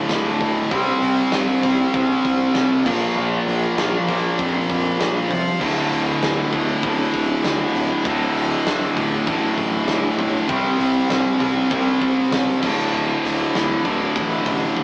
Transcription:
Already playing: D2 A2 D3
0.09 D1, snare, open hi-hat
0.41 D2, kick, open hi-hat
0.70 C2 C3 G3 C4, kick, open hi-hat
1.01 C2, open hi-hat
1.31 C2, snare, open hi-hat
1.62 C2 C3 G3 C4, kick, open hi-hat
1.93 C2 C3 G3 C4, kick, open hi-hat
2.25 C2, kick, open hi-hat
2.54 C2, snare, open hi-hat
2.84 A#1 A#2 F3 A#3, kick, crash
3.15 A#1
3.46 A#1, open hi-hat
3.76 A#1 A#2 F3 A#3, snare, open hi-hat
4.08 A#1 A#2 F3 A#3, kick, open hi-hat
4.39 F2, kick, open hi-hat
4.69 F2, kick, open hi-hat
4.99 A#1, snare, open hi-hat
5.31 C2, kick, open hi-hat
5.59 D1 D2 A2 D3, kick, crash
5.63 D3
5.92 D1, snare, open hi-hat
6.22 D1, snare, open hi-hat
6.52 D1 D2 A2 D3, kick, open hi-hat
6.83 D1 D2 A2 D3, kick, open hi-hat
7.13 D1, kick, open hi-hat
7.43 D2, snare, open hi-hat
7.74 D1, open hi-hat
8.02 D1 D2 A2 D3, kick, open hi-hat
8.08 D3
8.34 D1, open hi-hat
8.65 D1, snare, open hi-hat
8.95 D1 D2 A2 D3, kick, open hi-hat
9.27 A1 D2 A2 D3, kick, open hi-hat
9.58 A1, kick, open hi-hat
9.86 D1, snare, open hi-hat
10.19 B1, kick, open hi-hat
10.47 C2 C3 G3 C4, kick, open hi-hat
10.52 C4
10.78 C2, open hi-hat
11.09 C2, snare, open hi-hat
11.38 C2 C3 G3 C4, kick, open hi-hat
11.71 C2 C3 G3, kick, open hi-hat
11.75 C4
12.01 C2, kick, open hi-hat
12.31 C#2, snare, open hi-hat
12.61 D1 D2 A2 D3, kick, crash
12.92 D1
13.24 D1, snare, open hi-hat
13.53 D1 D2 A2 D3, snare, open hi-hat
13.85 D1 D2 A2 D3, kick, open hi-hat
14.15 A1, kick, open hi-hat
14.46 A1, kick, open hi-hat
14.77 D1, kick

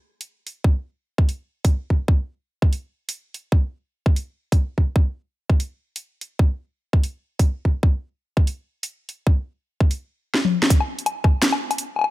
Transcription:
0.21 open hi-hat
0.47 open hi-hat
0.64 kick
1.18 kick
1.29 open hi-hat
1.65 kick, open hi-hat
1.90 kick
2.08 kick
2.62 kick
2.73 open hi-hat
3.09 open hi-hat
3.34 open hi-hat
3.52 kick
4.06 kick
4.16 open hi-hat
4.52 kick, open hi-hat
4.78 kick
4.96 kick
5.50 kick
5.60 open hi-hat
5.96 open hi-hat
6.21 open hi-hat
6.39 kick
6.93 kick
7.04 open hi-hat
7.39 kick, open hi-hat
7.65 kick
7.83 kick
8.37 kick
8.47 open hi-hat
8.83 open hi-hat
9.09 open hi-hat
9.27 kick
9.80 kick
9.91 open hi-hat
10.34 snare
10.45 high tom
10.63 snare
10.70 kick, closed hi-hat
10.80 low woodblock
10.99 closed hi-hat
11.06 closed hi-hat, low woodblock
11.24 kick, low woodblock
11.42 snare, closed hi-hat
11.53 low woodblock
11.71 closed hi-hat, low woodblock
11.78 closed hi-hat
11.96 low woodblock
11.99 low woodblock
12.01 low woodblock
12.04 low woodblock

